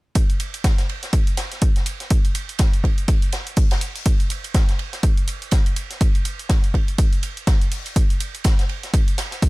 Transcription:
0.15 kick, closed hi-hat, ride
0.30 closed hi-hat
0.40 closed hi-hat, ride
0.54 closed hi-hat, ride
0.64 kick, snare, closed hi-hat, ride
0.78 snare, closed hi-hat
0.89 ride
1.03 snare, closed hi-hat
1.13 kick, closed hi-hat, ride
1.27 closed hi-hat
1.37 snare, closed hi-hat, ride
1.52 snare, closed hi-hat
1.62 kick, closed hi-hat, ride
1.76 snare, closed hi-hat
1.86 closed hi-hat, ride
2.00 snare, closed hi-hat
2.10 kick, closed hi-hat, ride
2.25 closed hi-hat, ride
2.35 closed hi-hat, ride
2.49 closed hi-hat
2.58 kick, snare, closed hi-hat, ride
2.74 closed hi-hat
2.84 kick, ride
2.98 closed hi-hat
3.08 kick, closed hi-hat, ride
3.22 closed hi-hat
3.32 snare, closed hi-hat, ride
3.47 closed hi-hat
3.56 kick, closed hi-hat, open hi-hat
3.71 snare, closed hi-hat, ride
3.81 closed hi-hat
3.96 closed hi-hat, open hi-hat
4.06 kick, closed hi-hat, ride
4.20 closed hi-hat
4.30 closed hi-hat, ride
4.44 closed hi-hat, ride
4.54 kick, snare, closed hi-hat, ride
4.69 snare, closed hi-hat
4.79 ride
4.93 snare, closed hi-hat
5.03 kick, closed hi-hat, ride
5.17 closed hi-hat
5.28 closed hi-hat, ride
5.42 closed hi-hat
5.51 kick, snare, closed hi-hat, ride
5.66 closed hi-hat, ride
5.76 closed hi-hat, ride
5.90 snare, closed hi-hat
6.01 kick, closed hi-hat, ride
6.15 closed hi-hat, ride
6.25 closed hi-hat, ride
6.39 closed hi-hat
6.49 kick, snare, closed hi-hat, ride
6.64 closed hi-hat
6.74 kick, ride
6.88 closed hi-hat
6.98 kick, closed hi-hat, ride
7.13 closed hi-hat
7.23 closed hi-hat, ride
7.37 closed hi-hat
7.47 kick, snare, closed hi-hat, ride
7.61 closed hi-hat
7.72 closed hi-hat, open hi-hat
7.86 closed hi-hat, ride
7.96 kick, closed hi-hat, ride
8.10 closed hi-hat
8.20 closed hi-hat, ride
8.34 closed hi-hat, ride
8.44 kick, snare, closed hi-hat, ride
8.59 snare, closed hi-hat
8.69 ride
8.83 snare, closed hi-hat
8.94 kick, closed hi-hat, ride
9.08 closed hi-hat
9.18 snare, closed hi-hat, ride
9.31 snare, closed hi-hat
9.42 kick, closed hi-hat, ride

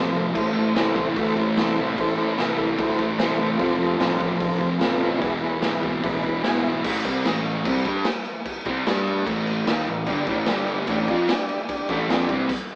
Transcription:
Already playing: A1 F2 C3 F3 A3 F4 A4 C5
0.13 C3 F3
0.34 A1 A2 E3 A3 E4 A4 C5, kick, crash
0.53 E3 A3
0.58 E4 A4 C5
0.75 C2 A2 E3 A3, snare, open hi-hat
0.79 E4 A4 C5
0.95 A2 E3 A3, kick
1.16 D2 A2 E3 A3, kick, open hi-hat
1.21 E4 A4 C5
1.36 A1 E3 A3, kick
1.57 C2 A2 E3 A3 E4 A4 C5, snare, open hi-hat
1.77 A3
1.81 E3
1.98 A1 A2 E3 E4 A4 C5, kick, open hi-hat
2.02 A3
2.17 A3 E4 A4 C5
2.21 E3
2.38 C2 A2 E3 A3 E4 A4 B4, snare, open hi-hat
2.58 A2 E3 A3, kick
2.78 D2 A2 E3 A3 E4 A4 C5, kick, open hi-hat
2.90 snare
2.99 A1 E3 A3, kick
3.19 C2 A2 E3 A3 E4 A4 C5, snare, open hi-hat
3.38 A3
3.42 E3
3.56 F1 F2 C3 F4 A4 C5, kick, open hi-hat
3.61 F3
3.77 F3 F4 A4 C5
3.82 C3
3.98 A1 F2 C3 F3 F4 A4 C5, snare, open hi-hat
4.19 F2 C3 F3, kick
4.36 F2 F4 A4 C5, kick, open hi-hat
4.41 A1 C3 F3
4.51 snare
4.59 F1 C3 F3, kick
4.78 F2 C3 F4 A4 B4, snare, open hi-hat
4.82 A1 F3
4.99 C3 F3
5.16 E2 E4 G#4 B4
5.21 E1 B2 E3, kick, open hi-hat
5.40 B2 E3 E4 G#4 B4
5.59 G#1 E2 B2 E4 G#4 B4, snare, open hi-hat
5.66 E3
5.82 E2 B2 E3, kick
6.03 A1 E2 B2 E4 G#4 B4, kick, open hi-hat
6.07 E3
6.23 E1 E3 B5, kick
6.27 B2
6.42 G#1 E2 B2 E4 G#4 B4 G#5, snare, open hi-hat
6.47 E3
6.64 E3 E5
6.69 B2
6.84 A1 A2 E3 A3, kick, crash
7.05 C2 C3 G3 C4, kick, crash
7.25 A1 A2 E3 A3, snare, crash
7.45 crash
7.65 C2 C3 G3 C4, kick, crash
7.85 G2 G3 D4 G4, kick, crash
8.05 snare, crash
8.25 crash
8.45 kick, crash
8.65 C2 C3 G3 C4, kick, crash
8.86 G2 G3 D4 G4, snare, crash
9.07 crash
9.26 A1 A2 E3 A3, kick, crash
9.47 crash
9.66 D#2 D#3 A#3 D#4, snare, crash
9.87 A1 A2 E3, crash
10.06 G1 G2 D3 G3 D4 G4 D5, kick, crash
10.27 A1 A2 E3 A3, kick, crash
10.46 G1 G2 D3 G3 D4 G4 D5, snare, crash
10.67 crash
10.87 A1 A2 E3 A3 D4 G4 D5, kick, crash
11.08 F2 F3 C4 F4, kick, crash
11.29 D4 G4, snare, crash
11.34 D5
11.49 crash
11.69 D4 G4 D5, kick, crash
11.89 A1 A2 E3 A3, kick, crash
12.09 F2 F3 C4 D4 F4 G4 D5, snare, crash
12.29 C2 C3 G3 C4, kick, crash
12.49 kick, crash

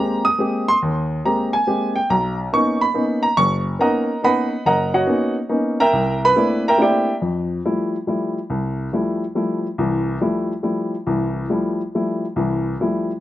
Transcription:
Already playing: G#3 A#3 C4 G4 A#5
0.25 D#6
0.38 G#3 A#3 C4 G4
0.68 C6
0.82 D#2
1.25 G#3 A#3 C4 G4 A#5
1.53 G#5
1.67 G#3 A#3 C4 G4
1.96 G5
2.10 B1 A#5
2.53 A#3 B3 C#4 D#4 C#6
2.81 B5
2.94 A#3 B3 C#4 D#4
3.23 A#5
3.37 F#1 C#6
3.79 A#3 B3 C#4 D#4 A#4 D#5 F#5 A#5
4.22 A#3 B3 C#4 D#4 B4 D#5 F#5 B5
4.66 F#1 A#4 D#5 F#5 A#5
4.94 F#4 C#5 D#5 F#5
5.07 A#3 B3 C#4 D#4
5.49 A#3 B3 C#4 D#4
5.80 A#4 E5 G5 A#5
5.93 C2
6.25 B4 B5
6.36 A3 A#3 C4 D4 E4
6.68 A#4 E5 G5 A#5
6.78 A3 A#3 C4 D4 E4 G4 G5
6.82 D5 E5
7.22 F2
7.65 F3 G3 A3 E4
8.07 F3 G3 A3 E4
8.50 C2
8.92 F3 G3 A3 E4
9.35 F3 G3 A3 E4
9.78 C2 E3
10.21 F3 G3 A3 E4
10.63 F3 G3 A3 E4
11.06 C2 E3
11.49 F3 G3 A3 E4
11.95 F3 G3 A3 E4
12.36 C2 E3
12.80 F3 G3 A3 E4

